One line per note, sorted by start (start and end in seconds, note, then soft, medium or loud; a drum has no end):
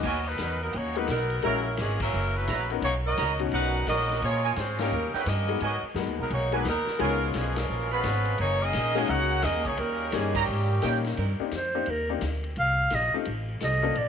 0.03 0.37 D#2 medium
0.03 0.24 F#3 medium
0.03 0.24 B3 medium
0.03 0.26 B3 medium
0.03 0.24 D#4 medium
0.03 0.19 F#4 medium
0.03 0.26 F#4 medium
0.03 0.19 A#4 medium
0.03 0.26 A#4 medium
0.03 0.19 B4 medium
0.03 0.26 D#5 medium
0.03 0.19 G#5 medium
0.03 kick medium
0.03 crash medium
0.25 0.60 D#3 medium
0.25 0.60 F#3 medium
0.25 0.61 F#3 medium
0.25 0.61 B3 medium
0.25 0.61 D#4 medium
0.25 0.61 A#4 medium
0.25 0.62 B4 medium
0.38 0.73 E2 medium
0.38 snare medium
0.38 hi-hat pedal medium
0.38 ride medium
0.61 0.73 D#3 medium
0.61 0.73 F#3 medium
0.61 0.73 A#3 medium
0.61 0.73 B3 medium
0.61 0.73 D#4 medium
0.61 0.73 A#4 medium
0.73 1.08 D#2 medium
0.73 0.96 A#3 medium
0.73 0.96 C#4 medium
0.73 0.96 D#4 medium
0.73 0.97 F#4 medium
0.73 0.97 C#5 medium
0.73 ride medium
0.95 1.07 D#3 medium
0.95 1.08 F#3 medium
0.95 1.09 F#3 medium
0.95 1.07 G#3 medium
0.95 1.09 A#3 medium
0.95 1.09 B3 medium
0.95 1.08 B3 medium
0.95 1.07 D#4 medium
0.95 1.09 D#4 medium
0.95 1.08 F#4 medium
0.95 1.08 A#4 medium
0.95 1.09 B4 medium
0.95 ride soft
1.08 1.42 B1 medium
1.08 1.41 D#3 medium
1.08 1.41 F#3 medium
1.08 1.42 F#3 medium
1.08 1.42 B3 medium
1.08 1.42 D#4 medium
1.08 1.41 A#4 medium
1.08 1.42 A#4 medium
1.08 snare medium
1.08 hi-hat pedal medium
1.08 ride medium
1.30 ride soft
1.42 1.78 A#1 medium
1.42 1.76 C#3 medium
1.42 1.76 E3 medium
1.42 1.76 F#3 medium
1.42 1.63 G#3 medium
1.42 1.76 A#3 medium
1.42 1.63 C#4 medium
1.42 1.76 C#4 medium
1.42 1.64 E4 medium
1.42 1.76 E4 medium
1.42 1.58 F#4 medium
1.42 1.64 F#4 medium
1.42 1.64 A#4 medium
1.42 1.76 A#4 medium
1.42 1.59 C#5 medium
1.42 1.59 E5 medium
1.42 1.58 A#5 medium
1.42 ride medium
1.77 2.12 G#1 medium
1.77 2.01 E3 medium
1.77 2.01 G#3 medium
1.77 2.01 A#3 medium
1.77 2.01 C#4 medium
1.77 2.02 G#4 medium
1.77 snare medium
1.77 hi-hat pedal medium
1.77 ride medium
2.00 2.33 C#3 medium
2.00 2.33 E3 medium
2.00 2.34 F#3 medium
2.00 2.33 A#3 medium
2.00 2.34 C#4 medium
2.00 2.34 E4 medium
2.00 2.34 A#4 medium
2.00 kick medium
2.00 crash medium
2.13 2.47 F#1 medium
2.36 2.71 C#3 medium
2.36 2.71 E3 medium
2.36 2.71 F#3 medium
2.36 2.71 B3 medium
2.36 2.71 C#4 medium
2.36 2.71 E4 medium
2.36 2.71 B4 medium
2.48 2.81 A#1 medium
2.48 2.63 F#4 medium
2.48 2.63 C#5 medium
2.48 2.63 E5 medium
2.48 2.63 A#5 medium
2.48 snare medium
2.48 hi-hat pedal medium
2.48 ride medium
2.70 2.82 B3 medium
2.70 2.82 C#4 medium
2.70 2.82 D#4 medium
2.70 2.82 F#4 soft
2.70 2.82 A#4 medium
2.70 ride soft
2.82 3.16 B1 medium
2.82 2.94 A#3 medium
2.82 2.93 C#4 medium
2.82 2.93 D#4 medium
2.82 2.94 F#4 medium
2.82 2.94 C#5 medium
2.82 ride medium
3.05 3.38 F#3 medium
3.05 3.38 B3 medium
3.05 3.37 D#4 medium
3.05 3.38 F#4 medium
3.05 3.37 A#4 medium
3.05 3.38 A#4 medium
3.05 3.38 D#5 loud
3.17 3.51 C#2 medium
3.17 3.33 F#4 medium
3.17 3.33 B4 medium
3.17 3.33 D#5 medium
3.17 3.33 A#5 medium
3.17 snare medium
3.17 hi-hat pedal soft
3.17 ride medium
3.39 3.85 B2 medium
3.39 3.84 C#4 medium
3.39 3.84 D#4 medium
3.39 3.85 F#4 medium
3.39 ride soft
3.51 3.86 B1 medium
3.51 3.85 A#2 medium
3.51 3.85 D#4 medium
3.51 3.85 F#4 medium
3.51 3.85 A#4 loud
3.51 3.85 B4 medium
3.51 3.85 F#5 loud
3.51 ride medium
3.87 4.21 A#1 medium
3.87 4.20 F#3 medium
3.87 4.20 B3 medium
3.87 4.19 D#4 medium
3.87 4.20 F#4 medium
3.87 4.20 A#4 medium
3.87 4.20 D#5 loud
3.87 snare medium
3.87 hi-hat pedal medium
3.87 ride medium
3.99 snare soft
4.09 snare soft
4.09 ride soft
4.22 4.55 A#2 medium
4.22 4.55 F3 medium
4.22 4.55 G#3 medium
4.22 4.55 A#3 medium
4.22 4.54 C#4 medium
4.22 4.55 F4 medium
4.22 4.55 G#4 medium
4.22 4.55 C#5 medium
4.22 ride medium
4.44 4.53 F4 medium
4.44 4.53 A#4 medium
4.44 4.53 C#5 medium
4.44 4.53 G#5 loud
4.56 4.90 G#2 medium
4.56 4.79 G#3 medium
4.56 4.79 C4 medium
4.56 4.79 C#4 medium
4.56 4.80 F4 medium
4.56 4.79 C5 medium
4.56 snare medium
4.56 hi-hat pedal soft
4.56 ride medium
4.79 5.11 C#3 medium
4.79 5.11 G3 medium
4.79 5.12 G3 medium
4.79 4.90 A#3 medium
4.79 5.11 A#3 medium
4.79 4.90 C#4 medium
4.79 5.12 C#4 medium
4.79 4.91 D#4 soft
4.79 5.12 D#4 medium
4.79 4.91 G4 medium
4.79 4.91 A#4 medium
4.79 5.12 A#4 medium
4.79 snare medium
4.79 ride medium
4.92 5.12 D#2 medium
5.14 5.27 G#3 medium
5.14 5.26 B3 medium
5.14 5.27 C#4 medium
5.14 5.23 D#4 medium
5.14 5.27 E4 medium
5.14 5.23 A#4 medium
5.14 5.27 B4 medium
5.14 5.23 C#5 medium
5.14 5.22 G5 medium
5.14 muted upright bass stroke soft
5.14 snare soft
5.26 5.60 G2 medium
5.26 5.61 G3 medium
5.26 5.61 A#3 medium
5.26 5.62 C#4 medium
5.26 5.61 D#4 medium
5.26 5.62 G4 medium
5.26 5.62 A#4 medium
5.26 5.62 D#5 medium
5.26 snare medium
5.26 hi-hat pedal medium
5.26 ride medium
5.48 5.60 G#3 soft
5.48 5.60 B3 soft
5.48 5.60 D#4 soft
5.48 5.60 F#4 soft
5.48 5.60 G#4 medium
5.48 ride soft
5.60 5.82 G#2 medium
5.60 5.82 F#3 medium
5.60 5.82 B3 medium
5.60 5.83 B3 medium
5.60 5.82 D#4 medium
5.60 5.77 F#4 medium
5.60 5.83 F#4 medium
5.60 5.77 A#4 medium
5.60 5.83 A#4 medium
5.60 5.77 B4 medium
5.60 5.83 D#5 medium
5.60 5.77 G#5 medium
5.60 ride medium
5.82 muted upright bass stroke soft
5.95 6.07 F#2 medium
5.95 6.48 G#3 soft
5.95 6.48 B3 soft
5.95 6.48 D#4 medium
5.95 6.48 F#4 medium
5.95 6.49 A#4 medium
5.95 snare medium
5.95 hi-hat pedal medium
5.95 ride medium
6.07 6.18 D#2 medium
6.18 6.30 B1 medium
6.18 6.30 D#3 medium
6.18 6.30 F#3 medium
6.18 6.31 F#3 medium
6.18 6.30 A#3 medium
6.18 6.32 B3 medium
6.18 6.31 D#4 medium
6.18 6.32 A#4 medium
6.30 6.64 B1 medium
6.30 6.53 A#3 medium
6.30 6.51 C#4 medium
6.30 6.53 D#4 medium
6.30 6.53 F#4 medium
6.30 6.53 C#5 medium
6.30 ride medium
6.52 6.65 D#3 medium
6.52 6.65 F#3 medium
6.52 6.64 G#3 medium
6.52 6.64 B3 medium
6.52 6.66 B3 medium
6.52 6.64 D#4 medium
6.52 6.67 D#4 medium
6.52 6.64 F#4 soft
6.52 6.61 F#4 medium
6.52 6.61 A#4 medium
6.52 6.64 A#4 medium
6.52 6.61 B4 medium
6.52 6.67 B4 medium
6.52 6.61 G#5 medium
6.52 ride soft
6.56 6.67 F#3 medium
6.56 6.67 A#3 medium
6.64 6.85 D#2 medium
6.64 6.98 D#3 medium
6.64 6.98 F#3 medium
6.64 6.99 A#4 medium
6.64 snare medium
6.64 hi-hat pedal medium
6.64 ride medium
6.68 6.99 F#3 medium
6.68 6.99 B3 medium
6.68 6.99 D#4 medium
6.87 muted upright bass stroke soft
6.87 snare soft
6.99 7.34 C#2 medium
6.99 7.33 B2 medium
6.99 7.33 F3 medium
6.99 7.52 G#3 medium
6.99 7.32 A#3 medium
6.99 7.52 B3 medium
6.99 7.52 C#4 medium
6.99 7.53 D#4 medium
6.99 7.53 F4 medium
6.99 7.15 F4 medium
6.99 7.15 B4 medium
6.99 7.15 C#5 medium
6.99 7.15 G#5 medium
6.99 ride medium
7.03 7.34 G#3 medium
7.03 7.34 C#4 medium
7.03 7.34 F4 medium
7.03 7.34 A#4 medium
7.34 7.69 B1 medium
7.34 7.56 B2 medium
7.34 7.56 F3 medium
7.34 7.58 F3 medium
7.34 7.57 G#3 medium
7.34 7.58 B3 medium
7.34 7.57 C#4 medium
7.34 7.58 G#4 medium
7.34 snare medium
7.34 hi-hat pedal medium
7.34 ride medium
7.56 7.92 B2 medium
7.56 7.91 F3 medium
7.56 7.92 G#3 medium
7.56 7.92 A#3 medium
7.56 7.92 C#4 medium
7.56 7.92 F4 medium
7.56 7.92 A#4 medium
7.56 snare medium
7.56 ride medium
7.69 8.03 A#1 medium
7.92 8.36 F3 medium
7.92 8.36 G#3 medium
7.92 8.36 B3 medium
7.92 8.36 C#4 medium
7.92 8.00 F4 medium
7.92 8.37 F4 medium
7.92 8.00 B4 medium
7.92 8.37 B4 medium
7.92 8.00 C#5 medium
7.92 8.00 B5 medium
8.04 8.38 G#1 medium
8.04 snare medium
8.04 hi-hat pedal medium
8.04 ride medium
8.25 ride soft
8.38 8.73 F#1 medium
8.38 8.60 D#3 medium
8.38 8.60 A#3 medium
8.38 8.60 C#4 medium
8.38 8.60 D#4 medium
8.38 8.60 G#4 medium
8.38 8.60 C#5 loud
8.38 ride medium
8.61 9.09 D#3 medium
8.61 9.08 A#3 medium
8.61 9.09 C#4 medium
8.61 9.07 D#4 medium
8.61 9.09 G#4 loud
8.61 9.08 A#4 medium
8.61 9.09 D#5 loud
8.73 9.08 A#1 medium
8.73 snare medium
8.73 hi-hat pedal medium
8.73 ride medium
8.95 9.41 G#3 medium
8.95 9.41 A#3 medium
8.95 9.41 C#4 medium
8.95 9.41 D#4 medium
8.95 9.41 F#4 medium
8.95 9.05 F#4 loud
8.95 9.05 A#4 medium
8.95 9.05 D#5 medium
8.95 9.05 G#5 loud
8.95 ride soft
9.08 9.43 C#2 loud
9.08 9.43 C#4 loud
9.08 9.42 D#4 medium
9.08 9.44 D#4 medium
9.08 9.43 F#4 medium
9.08 9.42 A#4 medium
9.08 9.44 C#5 loud
9.08 9.44 F#5 loud
9.08 ride medium
9.42 9.55 E2 medium
9.42 9.64 D#3 medium
9.42 9.64 A#3 medium
9.42 9.66 C#4 medium
9.42 9.65 D#4 medium
9.42 9.65 G#4 medium
9.42 9.66 A#4 medium
9.42 9.66 D#5 loud
9.42 snare medium
9.42 hi-hat pedal medium
9.42 ride medium
9.55 9.66 D#2 medium
9.65 9.78 C#2 medium
9.65 9.78 D#3 medium
9.65 9.77 A#3 medium
9.65 9.79 A#3 medium
9.65 9.78 C#4 medium
9.65 9.78 D#4 medium
9.65 9.79 G#4 medium
9.65 9.79 C#5 medium
9.65 kick medium
9.65 ride medium
9.77 10.12 D#2 medium
9.77 10.13 C#3 medium
9.77 10.13 G3 medium
9.77 10.13 A#3 medium
9.77 10.13 C#4 medium
9.77 10.13 D#4 medium
9.77 10.13 A#4 loud
9.77 ride medium
10.12 10.47 G2 medium
10.12 10.36 E3 medium
10.12 10.33 G3 medium
10.12 10.35 G#3 medium
10.12 10.33 A#3 medium
10.12 10.35 A#3 medium
10.12 10.33 C#4 medium
10.12 10.35 C#4 medium
10.12 10.33 D#4 soft
10.12 10.33 G4 medium
10.12 10.36 G#4 medium
10.12 snare medium
10.12 hi-hat pedal medium
10.12 ride medium
10.35 11.05 A#2 medium
10.35 11.05 C#3 medium
10.35 11.06 D#3 medium
10.35 11.05 G3 medium
10.35 11.05 A#3 medium
10.35 11.06 C#4 medium
10.35 10.44 G4 loud
10.35 11.05 G4 medium
10.35 10.44 C#5 medium
10.35 10.44 D#5 medium
10.35 10.44 A#5 loud
10.35 kick medium
10.35 crash medium
10.48 10.82 G#2 medium
10.82 11.17 A#2 medium
10.82 11.17 G3 medium
10.82 11.17 A#3 medium
10.82 11.17 C#4 medium
10.82 11.18 D#4 medium
10.82 10.97 G4 medium
10.82 11.18 A#4 medium
10.82 10.98 C#5 medium
10.82 10.97 D#5 medium
10.82 10.97 G5 medium
10.82 snare medium
10.82 hi-hat pedal medium
10.82 ride medium
11.04 snare medium
11.04 ride soft
11.17 11.38 G2 medium
11.17 11.32 D#3 medium
11.17 11.33 C4 medium
11.17 11.32 D4 medium
11.17 11.32 A#4 medium
11.17 ride medium
11.40 11.51 A#3 medium
11.40 11.51 C4 soft
11.40 11.51 D4 soft
11.40 11.51 D#4 soft
11.40 11.51 G4 medium
11.40 muted upright bass stroke soft
11.51 11.86 F2 medium
11.51 11.92 C5 medium
11.51 snare medium
11.51 hi-hat pedal medium
11.51 ride medium
11.75 11.86 A#3 medium
11.75 11.86 C4 medium
11.75 11.86 D4 medium
11.75 11.86 D#4 medium
11.75 11.86 G4 medium
11.86 12.21 D#2 medium
11.86 ride medium
11.90 12.11 A#4 medium
12.09 12.21 A#3 medium
12.09 12.21 C4 medium
12.09 12.21 D4 medium
12.09 12.21 D#4 soft
12.09 12.21 G4 medium
12.21 12.56 D2 medium
12.21 snare medium
12.21 hi-hat pedal medium
12.21 ride medium
12.44 ride soft
12.56 12.91 C2 medium
12.56 12.96 F5 medium
12.56 ride medium
12.90 13.12 A#1 loud
12.90 snare medium
12.90 hi-hat pedal medium
12.90 ride medium
12.95 13.15 D#5 medium
13.14 13.25 A3 medium
13.14 13.25 C4 medium
13.14 13.25 D#4 medium
13.14 13.25 F4 medium
13.14 13.25 G4 medium
13.14 muted upright bass stroke soft
13.25 13.60 A1 medium
13.25 ride medium
13.60 13.95 C2 medium
13.60 13.96 F3 medium
13.60 13.96 C4 medium
13.60 13.96 D#4 medium
13.60 13.96 A4 medium
13.60 14.00 D#5 medium
13.60 snare medium
13.60 hi-hat pedal medium
13.60 ride medium
13.83 13.94 A#3 medium
13.83 13.95 C4 medium
13.83 13.94 D4 medium
13.83 13.94 F4 medium
13.83 13.95 A4 medium
13.95 14.08 A#1 medium
13.95 14.08 D5 medium
13.95 ride medium